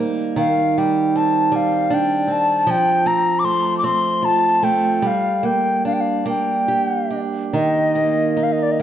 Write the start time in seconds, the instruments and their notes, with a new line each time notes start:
Already playing: steel-string acoustic guitar D#3 G3 D#4
0.00 steel-string acoustic guitar A#3
0.36 steel-string acoustic guitar D#3, flute F5
0.78 steel-string acoustic guitar G3, flute G5
1.16 steel-string acoustic guitar C4, flute A5
1.52 steel-string acoustic guitar G3, flute F5
1.90 steel-string acoustic guitar D4, flute G5
2.27 steel-string acoustic guitar C4
2.32 flute A5
2.67 steel-string acoustic guitar F3, flute G5
3.06 steel-string acoustic guitar C4, flute A#5
3.39 flute D6
3.44 steel-string acoustic guitar A3, flute C6
3.78 flute D6
3.84 steel-string acoustic guitar C4, flute C6
4.22 steel-string acoustic guitar F4, flute A5
4.63 steel-string acoustic guitar A3, flute G5
5.02 steel-string acoustic guitar G3
5.07 flute F5
5.43 steel-string acoustic guitar A#3, flute G5
5.85 steel-string acoustic guitar D4, flute F5
5.93 flute G5
6.01 flute F5
6.26 steel-string acoustic guitar A#3, flute G5
6.68 steel-string acoustic guitar G4
7.11 steel-string acoustic guitar D4
7.53 steel-string acoustic guitar D#3, flute D#5
7.95 steel-string acoustic guitar A#3
8.37 steel-string acoustic guitar D#4
8.43 flute F5
8.52 flute D#5
8.63 flute D5
8.72 flute D#5